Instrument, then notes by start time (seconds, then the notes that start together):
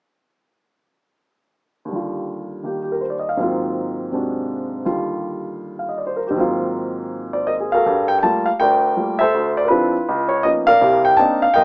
grand piano
1.85 D#2 D3
1.92 G3 F4
2.63 D#3 A#3 G4
2.83 G4
2.92 A#4
3.01 C5
3.10 D5
3.19 D#5
3.29 F5
3.37 G#2 D#3 F#3 A#3
3.41 C4 F4
4.12 C3 G#3 C4 D4 F#4
4.85 D#2 D3 G3 F4
5.79 F5
5.89 D#5
5.98 D5
6.07 C5
6.16 A#4
6.27 G#2 G4
6.32 D#3 F#3
6.37 A#3 C4 F4
7.33 C5 D5
7.47 A#4 D#5
7.60 G#4
7.72 F#4 A4 A#4 F5
7.86 G2
8.08 G5
8.19 G5 A5
8.23 G3 A3 A#3 F4
8.46 F5
8.60 D2 A#4 D5 G5
8.97 G3 A3 A#3 F4
9.19 A4 C5 E5
9.34 D2
9.57 D5
9.65 A#4 B4
9.70 F3 C4 D4 E4 F4
10.09 C#2
10.29 C#5
10.43 F3 A#3 B3 C#4 D#4 D#5
10.67 A#4 D5 F5
10.81 C2 C3
11.05 G5
11.17 A#3 C4 D4 D#4 A5
11.42 F5
11.54 G1 A#4 D#5 G5